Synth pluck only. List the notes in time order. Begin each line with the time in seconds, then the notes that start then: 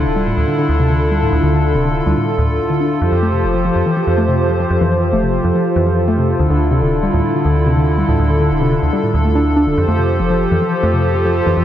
0.16 G3
0.27 A2
0.48 D3
0.59 D3
0.80 C3
0.90 D3
1.11 G3
1.22 A2
1.43 D3
1.54 D3
1.75 C3
1.85 D3
2.07 G3
2.17 A2
2.38 A2
2.49 D2
2.70 D3
2.80 D4
3.02 F3
3.23 A3
3.33 C3
3.54 F3
3.65 F3
3.86 E3
3.97 F3
4.18 A3
4.28 C3
4.50 F3
4.60 F3
4.81 E3
4.92 F3
5.13 A3
5.24 C3
5.45 F3
5.55 F3
5.76 E3
5.87 F3
6.08 A3
6.18 C3
6.40 D3
6.50 D3
6.71 C3
6.82 D3
7.03 G3
7.14 A2
7.35 D3
7.45 D3
7.66 C3
7.77 D3
7.98 G3
8.09 A2
8.30 D3
8.40 D3
8.61 C3
8.72 D3
8.93 G3
9.03 A2
9.25 A3
9.35 D4
9.56 D4
9.67 D3
9.88 A3
9.99 C3
10.20 F3
10.30 F3
10.52 E3
10.62 F3
10.83 A3
10.94 C3
11.15 F3
11.25 F3
11.47 E3
11.57 F3